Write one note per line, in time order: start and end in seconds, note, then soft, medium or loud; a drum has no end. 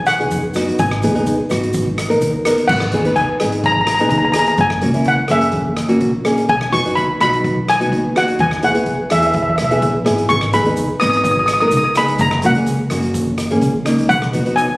0.00 0.32 B1 medium
0.06 0.75 F#5 loud
0.06 cross-stick loud
0.06 closed hi-hat medium
0.06 shaker medium
0.19 0.41 B3 medium
0.19 0.42 D#4 medium
0.19 0.42 G#4 medium
0.19 closed hi-hat medium
0.31 0.68 F#2 medium
0.31 kick medium
0.31 closed hi-hat medium
0.31 shaker loud
0.54 0.79 B3 medium
0.54 0.79 D#4 medium
0.54 0.79 F#4 medium
0.54 cross-stick medium
0.54 closed hi-hat medium
0.54 shaker medium
0.68 closed hi-hat medium
0.79 1.06 G#1 loud
0.79 2.18 G#5 medium
0.79 kick loud
0.79 closed hi-hat medium
0.79 shaker medium
0.91 cross-stick loud
1.02 1.22 D#2 loud
1.02 1.11 B3 medium
1.02 1.11 D#4 medium
1.02 1.11 G#4 medium
1.02 closed hi-hat medium
1.02 shaker medium
1.15 1.36 B3 medium
1.15 1.37 D#4 medium
1.15 1.37 G#4 medium
1.15 closed hi-hat medium
1.26 kick medium
1.26 closed hi-hat medium
1.26 shaker medium
1.49 2.22 G#1 loud
1.49 1.86 B3 medium
1.49 1.87 D#4 medium
1.49 1.87 F#4 medium
1.49 cross-stick medium
1.49 closed hi-hat medium
1.49 shaker medium
1.63 closed hi-hat medium
1.73 kick loud
1.73 closed hi-hat medium
1.73 shaker medium
1.98 cross-stick medium
1.98 closed hi-hat medium
1.98 shaker medium
2.08 2.31 B3 medium
2.08 2.31 D#4 medium
2.08 2.32 A#4 medium
2.08 closed hi-hat medium
2.21 2.58 D#2 medium
2.21 kick medium
2.21 closed hi-hat medium
2.21 shaker loud
2.45 2.69 B3 medium
2.45 2.70 D#4 medium
2.45 2.70 A#4 loud
2.45 cross-stick medium
2.45 closed hi-hat medium
2.45 shaker medium
2.58 closed hi-hat medium
2.68 2.95 G#1 loud
2.68 3.18 F#5 loud
2.68 kick loud
2.68 crash loud
2.80 cross-stick loud
2.92 3.12 D#2 medium
2.92 3.00 B3 medium
2.92 3.00 D#4 medium
2.92 3.01 G#4 medium
2.92 closed hi-hat medium
3.05 3.26 B3 medium
3.05 3.27 D#4 medium
3.05 3.27 B4 medium
3.05 closed hi-hat medium
3.16 3.65 G#5 medium
3.16 kick medium
3.16 closed hi-hat medium
3.40 4.11 G#1 medium
3.40 3.76 B3 medium
3.40 3.77 D#4 medium
3.40 3.77 G#4 medium
3.40 cross-stick medium
3.40 closed hi-hat medium
3.52 closed hi-hat medium
3.64 3.71 A#5 loud
3.64 kick loud
3.64 closed hi-hat medium
3.72 3.80 A#5 medium
3.81 3.86 A#5 medium
3.87 3.93 A#5 medium
3.87 cross-stick loud
3.87 closed hi-hat medium
3.95 4.00 A#5 medium
3.99 4.22 B3 medium
3.99 4.22 D#4 medium
3.99 4.22 G#4 medium
3.99 4.08 A#5 medium
3.99 closed hi-hat medium
4.09 4.48 D#2 medium
4.09 4.17 A#5 medium
4.09 kick loud
4.09 closed hi-hat medium
4.18 4.24 A#5 medium
4.25 4.31 A#5 medium
4.32 4.59 B3 medium
4.32 4.59 D#4 medium
4.32 4.59 G#4 medium
4.32 4.38 A#5 medium
4.32 cross-stick medium
4.32 closed hi-hat loud
4.39 4.47 A#5 medium
4.46 4.55 A#5 medium
4.46 closed hi-hat medium
4.57 4.85 F#1 loud
4.57 5.09 G#5 loud
4.57 kick loud
4.57 closed hi-hat medium
4.70 cross-stick loud
4.81 5.01 C#2 loud
4.81 4.90 A#3 medium
4.81 4.90 C#4 medium
4.81 4.90 F#4 medium
4.81 closed hi-hat medium
4.94 5.16 A#3 medium
4.94 5.16 C#4 medium
4.94 5.16 E4 medium
4.94 closed hi-hat medium
5.04 5.30 F#5 medium
5.04 kick medium
5.04 closed hi-hat medium
5.28 6.01 F#1 loud
5.28 5.66 A#3 medium
5.28 5.66 C#4 medium
5.28 5.67 G#4 medium
5.28 6.22 E5 medium
5.28 cross-stick medium
5.28 closed hi-hat medium
5.41 closed hi-hat medium
5.52 kick loud
5.52 closed hi-hat medium
5.77 cross-stick medium
5.77 closed hi-hat medium
5.88 6.11 A#3 medium
5.88 6.11 C#4 medium
5.88 6.11 F#4 medium
5.88 closed hi-hat medium
6.00 6.38 A#1 medium
6.00 kick medium
6.00 closed hi-hat medium
6.24 6.49 A#3 medium
6.24 6.49 C#4 medium
6.24 6.49 G#4 loud
6.24 cross-stick loud
6.24 closed hi-hat medium
6.38 closed hi-hat medium
6.49 6.75 B1 loud
6.49 6.74 G#5 loud
6.49 kick loud
6.49 closed hi-hat medium
6.61 cross-stick loud
6.72 6.92 F#2 loud
6.72 6.80 B3 medium
6.72 6.80 D#4 medium
6.72 6.80 F#4 medium
6.72 6.95 C#6 loud
6.72 closed hi-hat medium
6.85 7.07 B3 medium
6.85 7.07 D#4 medium
6.85 7.07 F#4 medium
6.85 closed hi-hat medium
6.95 7.18 B5 loud
6.95 kick medium
6.95 closed hi-hat medium
7.20 7.93 B1 loud
7.20 7.58 B3 medium
7.20 7.58 D#4 medium
7.20 7.58 F#4 medium
7.20 7.70 B5 loud
7.20 cross-stick medium
7.20 closed hi-hat medium
7.33 closed hi-hat medium
7.44 kick loud
7.44 closed hi-hat medium
7.69 8.18 G#5 loud
7.69 cross-stick loud
7.69 closed hi-hat medium
7.80 8.02 B3 medium
7.80 8.02 D#4 medium
7.80 8.02 F#4 medium
7.80 closed hi-hat medium
7.92 8.29 D#2 loud
7.92 kick loud
7.92 closed hi-hat medium
8.15 8.39 B3 medium
8.15 8.40 D#4 medium
8.15 8.40 F#4 medium
8.15 8.28 F#5 medium
8.15 cross-stick loud
8.15 closed hi-hat medium
8.28 closed hi-hat medium
8.39 8.64 E2 loud
8.39 8.62 G#5 loud
8.39 kick loud
8.39 closed hi-hat medium
8.51 cross-stick loud
8.62 8.82 B1 loud
8.62 8.70 B3 medium
8.62 8.71 E4 medium
8.62 8.71 G#4 medium
8.62 9.13 F#5 loud
8.62 closed hi-hat loud
8.74 8.96 B3 medium
8.74 8.97 E4 medium
8.74 8.97 G#4 medium
8.74 closed hi-hat medium
8.86 kick medium
8.86 closed hi-hat medium
9.10 9.59 E2 loud
9.10 9.47 B3 medium
9.10 9.47 E4 medium
9.10 9.47 G#4 medium
9.10 9.19 E5 medium
9.10 cross-stick medium
9.10 closed hi-hat loud
9.20 9.25 E5 medium
9.20 closed hi-hat medium
9.27 9.33 E5 medium
9.33 9.41 E5 soft
9.33 kick loud
9.33 closed hi-hat medium
9.42 9.49 E5 medium
9.50 9.55 E5 soft
9.56 9.63 E5 medium
9.56 cross-stick medium
9.56 closed hi-hat medium
9.61 9.81 B1 loud
9.61 9.70 E5 medium
9.71 9.92 B3 medium
9.71 9.92 E4 medium
9.71 9.93 G#4 medium
9.71 9.78 E5 medium
9.71 closed hi-hat medium
9.82 10.04 A#1 medium
9.82 kick loud
9.82 closed hi-hat medium
10.05 10.28 G#1 medium
10.05 10.29 B3 medium
10.05 10.30 E4 medium
10.05 10.30 G#4 loud
10.05 cross-stick medium
10.05 closed hi-hat medium
10.18 closed hi-hat medium
10.29 10.57 G#1 loud
10.29 10.54 C#6 loud
10.29 kick loud
10.29 closed hi-hat medium
10.29 shaker medium
10.41 cross-stick medium
10.53 10.73 D#2 loud
10.53 10.61 B3 medium
10.53 10.61 D#4 medium
10.53 10.61 G#4 medium
10.53 11.03 B5 loud
10.53 closed hi-hat medium
10.53 shaker medium
10.65 10.87 B3 medium
10.65 10.87 D#4 medium
10.65 10.87 G#4 medium
10.65 closed hi-hat medium
10.76 kick medium
10.76 closed hi-hat medium
10.76 shaker loud
11.00 11.72 G#1 loud
11.00 11.37 B3 medium
11.00 11.37 D#4 medium
11.00 11.38 B4 medium
11.00 11.09 D#6 loud
11.00 cross-stick medium
11.00 closed hi-hat medium
11.00 shaker medium
11.10 11.16 D#6 medium
11.10 closed hi-hat medium
11.17 11.23 D#6 medium
11.24 11.30 D#6 medium
11.24 kick loud
11.24 closed hi-hat medium
11.24 shaker loud
11.31 11.38 D#6 medium
11.39 11.45 D#6 medium
11.46 11.52 D#6 medium
11.46 cross-stick medium
11.46 closed hi-hat medium
11.46 shaker medium
11.54 11.59 D#6 medium
11.60 11.83 B3 medium
11.60 11.82 D#4 medium
11.60 11.83 A#4 medium
11.60 11.67 D#6 medium
11.60 closed hi-hat medium
11.68 11.76 D#6 medium
11.68 kick medium
11.68 closed hi-hat medium
11.68 shaker loud
11.72 12.08 C#2 loud
11.77 11.83 D#6 medium
11.84 11.92 D#6 medium
11.95 12.21 B3 medium
11.95 12.21 D#4 medium
11.95 12.21 G#4 medium
11.95 12.08 B5 loud
11.95 cross-stick loud
11.95 closed hi-hat medium
11.95 shaker loud
12.08 closed hi-hat medium
12.19 12.46 F#1 loud
12.19 12.45 A#5 loud
12.19 kick loud
12.19 closed hi-hat medium
12.19 shaker loud
12.31 cross-stick medium
12.42 12.62 C#2 loud
12.42 12.51 A#3 medium
12.42 12.51 C#4 medium
12.42 12.52 F#4 medium
12.42 closed hi-hat loud
12.42 shaker medium
12.46 12.89 F#5 medium
12.55 12.78 A#3 medium
12.55 12.78 C#4 medium
12.55 12.78 G#4 medium
12.55 closed hi-hat medium
12.66 kick medium
12.66 closed hi-hat medium
12.66 shaker loud
12.90 13.62 F#1 loud
12.90 13.27 A#3 medium
12.90 13.27 C#4 medium
12.90 13.28 F#4 medium
12.90 cross-stick medium
12.90 closed hi-hat medium
12.90 shaker medium
13.02 closed hi-hat medium
13.14 kick loud
13.14 closed hi-hat medium
13.14 shaker loud
13.38 cross-stick loud
13.38 closed hi-hat medium
13.38 shaker medium
13.51 13.72 A#3 medium
13.51 13.72 C#4 medium
13.51 13.73 G#4 loud
13.51 closed hi-hat medium
13.61 13.98 C#2 medium
13.61 kick loud
13.61 closed hi-hat medium
13.61 shaker medium
13.85 14.09 A#3 medium
13.85 14.10 C#4 medium
13.85 14.10 D#4 medium
13.85 cross-stick medium
13.85 closed hi-hat medium
13.85 shaker medium
13.98 closed hi-hat medium
14.09 14.36 B1 loud
14.09 14.58 F#5 loud
14.09 kick loud
14.09 closed hi-hat medium
14.09 shaker medium
14.22 cross-stick loud
14.33 14.52 F#2 loud
14.33 14.41 B3 medium
14.33 14.41 D#4 medium
14.33 14.41 F#4 medium
14.33 closed hi-hat loud
14.33 shaker medium
14.45 14.67 B3 medium
14.45 14.67 D#4 medium
14.45 14.68 F#4 medium
14.45 closed hi-hat medium
14.56 14.77 G#5 loud
14.56 kick medium
14.56 closed hi-hat medium
14.56 shaker medium